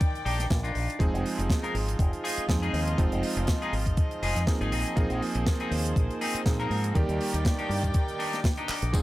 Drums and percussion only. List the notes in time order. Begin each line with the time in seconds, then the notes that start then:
0.01 kick, closed hi-hat
0.15 closed hi-hat
0.26 open hi-hat
0.39 snare, closed hi-hat
0.50 kick, snare, closed hi-hat
0.64 closed hi-hat
0.75 open hi-hat
0.90 closed hi-hat
1.00 kick, closed hi-hat
1.15 closed hi-hat
1.26 open hi-hat
1.39 closed hi-hat
1.50 kick, snare, closed hi-hat
1.64 closed hi-hat
1.75 open hi-hat
1.89 closed hi-hat
1.99 kick, closed hi-hat
2.13 closed hi-hat
2.25 open hi-hat
2.38 closed hi-hat
2.49 kick, snare, closed hi-hat
2.63 closed hi-hat
2.74 open hi-hat
2.88 closed hi-hat
2.98 kick, closed hi-hat
3.12 closed hi-hat
3.23 open hi-hat
3.37 closed hi-hat
3.47 kick, snare, closed hi-hat
3.62 closed hi-hat
3.73 open hi-hat
3.86 kick, closed hi-hat
3.97 kick, closed hi-hat
4.11 closed hi-hat
4.23 open hi-hat
4.36 snare, closed hi-hat
4.47 kick, snare, closed hi-hat
4.61 closed hi-hat
4.72 open hi-hat
4.86 closed hi-hat
4.97 kick, closed hi-hat
5.10 closed hi-hat
5.22 open hi-hat
5.35 closed hi-hat
5.47 kick, snare, closed hi-hat
5.60 closed hi-hat
5.72 open hi-hat
5.85 closed hi-hat
5.96 kick, closed hi-hat
6.11 closed hi-hat
6.21 open hi-hat
6.35 closed hi-hat
6.46 kick, snare, closed hi-hat
6.60 closed hi-hat
6.71 open hi-hat
6.84 closed hi-hat
6.95 kick, closed hi-hat
7.09 closed hi-hat
7.21 open hi-hat
7.34 closed hi-hat
7.45 kick, snare, closed hi-hat
7.59 closed hi-hat
7.71 open hi-hat
7.83 kick, closed hi-hat
7.94 kick, closed hi-hat
8.08 closed hi-hat
8.20 open hi-hat
8.33 snare, closed hi-hat
8.44 kick, snare, closed hi-hat
8.57 closed hi-hat
8.68 clap, open hi-hat
8.82 closed hi-hat
8.94 kick, closed hi-hat, tambourine